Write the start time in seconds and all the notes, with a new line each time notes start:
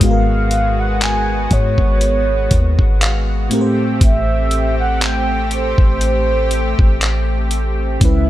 Already playing: G#3
0.00 G#1 G#2 G#3 B3 F#4 F5, kick, closed hi-hat
0.04 G#4
0.11 A#4
0.51 closed hi-hat
0.80 F#5
1.01 G#5, clap, closed hi-hat
1.51 G#2 C#5, kick, closed hi-hat
1.78 G#1, kick
2.01 closed hi-hat
2.51 D#2, kick, closed hi-hat
2.79 G#1, kick
3.01 F5, clap, closed hi-hat
3.49 A2 A3 C4 G4, closed hi-hat
3.54 A#4
3.61 C5
4.01 A1 E5, kick, closed hi-hat
4.51 closed hi-hat
4.80 F#5
5.01 G5, clap, closed hi-hat
5.51 C5, closed hi-hat
5.78 A1, kick
6.01 closed hi-hat
6.51 closed hi-hat
6.79 A1, kick
7.02 clap, closed hi-hat
7.51 closed hi-hat
8.00 C#2 C#3 G#3 B3 C#4 E4 E5, kick, closed hi-hat
8.05 B4